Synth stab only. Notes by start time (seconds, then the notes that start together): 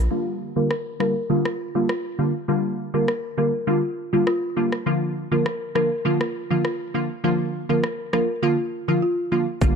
0.11 D3 G3 A#3 F4
0.56 D3 G3 A#3 F4
1.00 D3 G3 A#3 F4
1.30 D3 G3 A#3 F4
1.75 D3 G3 A#3 F4
2.18 D3 G3 A#3 F4
2.48 D3 G3 A#3 F4
2.94 D3 G3 A#3 F4
3.37 D3 G3 A#3 F4
3.67 D3 G3 A#3 F4
4.13 D3 G3 A#3 F4
4.56 D3 G3 A#3 F4
4.86 D3 F3 A#3 F4
5.31 D3 F3 A#3 F4
5.75 D3 F3 A#3 F4
6.05 D3 F3 A#3 F4
6.50 D3 F3 A#3 F4
6.94 D3 F3 A#3 F4
7.24 D3 F3 A#3 F4
7.69 D3 F3 A#3 F4
8.13 D3 F3 A#3 F4
8.42 D3 F3 A#3 F4
8.88 D3 F3 A#3 F4
9.32 D3 F3 A#3 F4
9.61 D3 G3 A#3 F4